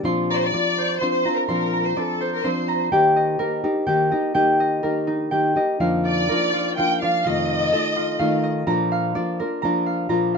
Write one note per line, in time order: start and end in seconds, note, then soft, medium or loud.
0.00 0.53 A#2 medium
0.00 0.67 D4 medium
0.00 1.67 G4 medium
0.00 0.53 D5 medium
0.00 0.14 G5 loud
0.05 0.52 F3 medium
0.05 0.53 C4 medium
0.05 0.53 D4 medium
0.05 0.53 F4 medium
0.05 1.01 C6 loud
0.31 0.37 D5 medium
0.31 1.25 A#5 medium
0.37 0.44 C5 medium
0.44 1.02 D5 medium
0.53 1.00 F3 soft
0.53 1.00 C4 soft
0.53 1.01 D4 soft
0.53 1.01 F4 soft
0.53 1.96 D5 medium
0.78 2.20 C5 medium
1.00 1.26 F3 medium
1.00 1.26 C4 medium
1.00 1.26 D4 medium
1.00 1.24 F4 medium
1.00 1.10 C5 medium
1.00 1.48 C6 medium
1.11 1.35 C5 medium
1.25 1.48 C4 soft
1.25 1.48 D4 soft
1.25 1.49 F4 soft
1.25 1.73 A#5 medium
1.37 1.48 A#4 medium
1.48 1.97 A#2 medium
1.48 1.95 F3 medium
1.48 1.95 C4 medium
1.48 1.96 D4 medium
1.48 1.96 F4 medium
1.48 1.83 A#4 medium
1.48 2.44 C6 medium
1.73 2.68 A#5 medium
1.86 1.97 C5 medium
1.96 2.43 F3 soft
1.96 2.44 C4 soft
1.96 2.44 D4 soft
1.96 2.44 F4 soft
1.96 2.34 A4 medium
1.96 3.22 D5 medium
2.21 4.19 C5 medium
2.35 2.45 A#4 medium
2.44 2.92 F3 medium
2.44 2.92 C4 medium
2.44 2.92 D4 medium
2.44 2.92 F4 medium
2.44 2.81 C5 medium
2.44 3.75 C6 medium
2.68 4.08 A#5 medium
2.92 3.38 D#3 medium
2.92 3.39 A#3 medium
2.92 3.39 D#4 medium
2.92 3.40 G4 medium
2.92 3.86 G5 loud
3.16 4.11 D#5 medium
3.39 3.63 D#3 soft
3.39 3.64 A#3 medium
3.39 3.64 D#4 medium
3.39 3.63 G4 medium
3.39 4.83 A#4 medium
3.64 3.87 A#3 soft
3.64 5.07 D#4 medium
3.64 3.87 D#4 soft
3.64 3.87 G4 medium
3.87 4.11 D#3 medium
3.87 4.12 A#3 medium
3.87 4.12 D#4 medium
3.87 4.11 G4 medium
3.87 4.34 G5 medium
4.11 4.34 A#3 soft
4.11 4.34 D#4 soft
4.11 4.34 G4 medium
4.11 4.60 D#5 medium
4.34 4.82 D#3 medium
4.34 4.84 A#3 medium
4.34 4.83 D#4 medium
4.34 4.83 G4 medium
4.34 5.31 G5 medium
4.60 5.56 D#5 medium
4.83 5.31 D#3 soft
4.83 5.31 A#3 medium
4.83 5.31 D#4 medium
4.83 5.31 G4 soft
4.83 6.28 A#4 medium
5.07 6.11 D#4 medium
5.31 5.56 D#3 medium
5.31 5.55 A#3 medium
5.31 5.56 D#4 medium
5.31 5.55 G4 medium
5.31 6.86 G5 medium
5.56 5.80 A#3 soft
5.56 5.80 D#4 soft
5.56 5.80 G4 medium
5.56 6.11 D#5 medium
5.80 6.28 F2 medium
5.80 6.29 D3 medium
5.80 6.29 F3 medium
5.80 6.29 A#3 medium
5.80 6.29 D4 medium
5.80 6.31 F4 medium
5.80 6.77 F5 medium
6.05 7.02 D5 medium
6.05 6.73 D5 medium
6.29 6.78 F3 soft
6.29 6.78 A#3 soft
6.29 6.78 D4 medium
6.29 6.79 F4 soft
6.29 7.78 A#4 medium
6.54 7.96 F4 medium
6.77 7.02 F3 medium
6.77 7.02 A#3 medium
6.77 7.02 D4 medium
6.77 7.01 F4 medium
6.77 7.24 F5 medium
6.77 7.01 G5 medium
7.02 7.26 F3 soft
7.02 7.25 A#3 soft
7.02 7.25 D4 soft
7.02 7.25 F4 soft
7.02 7.55 D5 medium
7.02 7.23 F5 medium
7.24 7.72 F2 medium
7.24 7.72 C3 medium
7.24 7.71 D#3 medium
7.24 7.73 A3 medium
7.24 7.73 D#4 medium
7.24 7.74 F4 medium
7.24 8.44 D#5 medium
7.24 8.19 F5 medium
7.49 8.43 D#5 medium
7.72 8.18 D#3 soft
7.72 8.19 A3 medium
7.72 8.20 D#4 medium
7.72 8.20 F4 medium
7.72 8.73 A4 medium
7.96 10.38 F4 medium
8.19 8.66 D#3 medium
8.19 8.67 A3 medium
8.19 8.67 D#4 medium
8.19 8.68 F4 medium
8.19 8.91 F5 medium
8.43 9.21 D#5 medium
8.67 9.15 A#2 medium
8.67 9.15 F3 medium
8.67 9.15 A#3 medium
8.67 9.15 D4 medium
8.67 9.16 F4 medium
8.67 9.62 A#5 loud
8.92 9.86 F5 medium
9.15 9.39 F3 medium
9.15 9.39 A#3 soft
9.15 9.39 D4 medium
9.15 9.39 F4 medium
9.15 10.38 D5 medium
9.40 9.63 A#3 soft
9.40 9.63 D4 soft
9.40 9.63 F4 soft
9.40 10.38 A#4 medium
9.62 10.09 F3 medium
9.62 10.10 A#3 medium
9.62 10.10 D4 medium
9.62 10.10 F4 medium
9.62 10.09 A#5 medium
9.86 10.34 F5 medium
10.09 10.38 A#2 medium
10.09 10.38 F3 medium
10.09 10.38 A#3 medium
10.09 10.38 D4 medium
10.09 10.38 F4 medium
10.09 10.38 A#5 medium
10.34 10.38 F5 medium